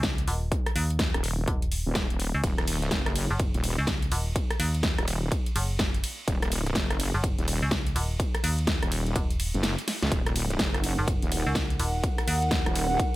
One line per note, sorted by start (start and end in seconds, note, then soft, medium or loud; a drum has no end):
0.00 0.26 C#2 loud
0.00 kick loud
0.00 snare loud
0.00 closed hi-hat medium
0.18 closed hi-hat medium
0.28 0.50 D#1 loud
0.28 open hi-hat loud
0.52 kick loud
0.52 closed hi-hat medium
0.66 cross-stick medium
0.66 closed hi-hat soft
0.76 1.12 D#2 loud
0.76 open hi-hat loud
0.90 closed hi-hat soft
0.99 kick loud
0.99 snare loud
0.99 closed hi-hat medium
1.14 1.46 D#1 loud
1.14 cross-stick medium
1.14 closed hi-hat medium
1.24 open hi-hat loud
1.48 1.84 D#1 loud
1.48 kick loud
1.48 closed hi-hat medium
1.62 closed hi-hat medium
1.72 open hi-hat loud
1.86 2.08 D#1 loud
1.95 kick loud
1.95 snare loud
1.95 closed hi-hat medium
2.10 2.32 D#1 loud
2.10 closed hi-hat medium
2.20 open hi-hat loud
2.34 2.42 C#2 medium
2.44 2.90 D#1 loud
2.44 kick loud
2.44 closed hi-hat medium
2.44 ride medium
2.58 cross-stick medium
2.58 closed hi-hat medium
2.68 open hi-hat loud
2.68 ride medium
2.82 closed hi-hat soft
2.91 3.28 F#1 medium
2.91 kick loud
2.91 snare loud
2.91 closed hi-hat medium
2.91 ride medium
3.06 cross-stick medium
3.06 closed hi-hat medium
3.16 open hi-hat loud
3.16 ride medium
3.31 3.52 F#1 loud
3.40 kick loud
3.40 closed hi-hat medium
3.40 ride medium
3.54 3.76 D#1 loud
3.54 closed hi-hat medium
3.64 open hi-hat loud
3.64 ride medium
3.78 4.10 C#2 loud
3.87 kick loud
3.87 snare loud
3.87 closed hi-hat medium
3.87 ride medium
4.02 closed hi-hat medium
4.12 4.34 D#1 loud
4.12 open hi-hat medium
4.12 ride medium
4.36 kick loud
4.36 closed hi-hat medium
4.36 ride medium
4.51 cross-stick medium
4.51 closed hi-hat medium
4.60 4.96 D#2 loud
4.60 open hi-hat loud
4.60 ride medium
4.75 closed hi-hat soft
4.83 kick loud
4.83 snare loud
4.83 closed hi-hat medium
4.83 ride medium
4.98 5.30 D#1 loud
4.98 cross-stick medium
4.98 closed hi-hat medium
5.08 open hi-hat medium
5.08 ride medium
5.32 kick loud
5.32 closed hi-hat medium
5.32 ride medium
5.46 closed hi-hat medium
5.56 6.02 F#1 loud
5.56 open hi-hat loud
5.56 ride medium
5.79 kick loud
5.79 snare loud
5.79 closed hi-hat medium
5.79 ride medium
5.94 closed hi-hat medium
6.04 open hi-hat medium
6.04 ride medium
6.28 6.74 D#1 loud
6.28 kick loud
6.28 closed hi-hat medium
6.28 ride medium
6.42 cross-stick medium
6.42 closed hi-hat medium
6.52 open hi-hat loud
6.52 ride medium
6.67 closed hi-hat soft
6.75 7.12 F#1 medium
6.75 kick loud
6.75 snare loud
6.75 closed hi-hat medium
6.75 ride medium
6.91 cross-stick medium
6.91 closed hi-hat medium
7.00 open hi-hat medium
7.00 ride medium
7.14 7.36 F#1 loud
7.24 kick loud
7.24 closed hi-hat medium
7.24 ride medium
7.38 7.60 D#1 loud
7.38 closed hi-hat medium
7.48 open hi-hat loud
7.48 ride medium
7.62 7.94 C#2 loud
7.71 kick loud
7.71 snare loud
7.71 closed hi-hat medium
7.71 ride medium
7.87 closed hi-hat medium
7.96 8.18 D#1 loud
7.96 open hi-hat medium
7.96 ride medium
8.20 kick loud
8.20 closed hi-hat medium
8.20 ride medium
8.35 cross-stick medium
8.35 closed hi-hat medium
8.44 8.80 D#2 loud
8.44 open hi-hat loud
8.44 ride medium
8.59 closed hi-hat soft
8.67 kick loud
8.67 snare loud
8.67 closed hi-hat medium
8.67 ride medium
8.82 9.14 D#1 loud
8.82 cross-stick medium
8.82 closed hi-hat medium
8.92 open hi-hat medium
8.92 ride medium
9.07 closed hi-hat soft
9.16 9.52 D#1 loud
9.16 kick loud
9.16 closed hi-hat medium
9.16 ride medium
9.31 closed hi-hat medium
9.40 open hi-hat loud
9.40 ride medium
9.54 9.76 F#1 loud
9.54 closed hi-hat soft
9.63 snare loud
9.63 closed hi-hat medium
9.63 ride medium
9.79 closed hi-hat medium
9.88 snare medium
9.88 open hi-hat medium
9.88 ride medium
10.02 10.10 C#2 loud
10.02 snare medium
10.02 closed hi-hat soft
10.12 10.58 D#1 loud
10.12 13.16 D#4 medium
10.12 13.16 A#4 medium
10.12 13.16 F#5 medium
10.12 kick loud
10.12 closed hi-hat medium
10.12 ride medium
10.27 cross-stick medium
10.27 closed hi-hat medium
10.36 open hi-hat loud
10.36 ride medium
10.51 closed hi-hat soft
10.59 10.96 F#1 medium
10.59 kick loud
10.59 snare loud
10.59 closed hi-hat medium
10.59 ride medium
10.74 cross-stick medium
10.74 closed hi-hat medium
10.84 open hi-hat loud
10.84 ride medium
10.99 11.20 F#1 loud
11.08 kick loud
11.08 closed hi-hat medium
11.08 ride medium
11.22 11.44 D#1 loud
11.22 closed hi-hat medium
11.32 open hi-hat loud
11.32 ride medium
11.46 11.78 C#2 medium
11.55 kick loud
11.55 snare loud
11.55 closed hi-hat medium
11.55 ride medium
11.70 closed hi-hat medium
11.80 12.02 D#1 loud
11.80 open hi-hat loud
11.80 ride medium
12.04 kick loud
12.04 closed hi-hat medium
12.04 ride medium
12.18 cross-stick medium
12.18 closed hi-hat medium
12.28 12.64 D#2 loud
12.28 open hi-hat loud
12.28 ride medium
12.42 closed hi-hat soft
12.51 kick loud
12.51 snare loud
12.51 closed hi-hat medium
12.51 ride medium
12.66 12.98 D#1 loud
12.66 cross-stick medium
12.66 closed hi-hat medium
12.76 open hi-hat loud
12.76 ride medium
13.00 kick loud
13.00 closed hi-hat medium
13.00 ride medium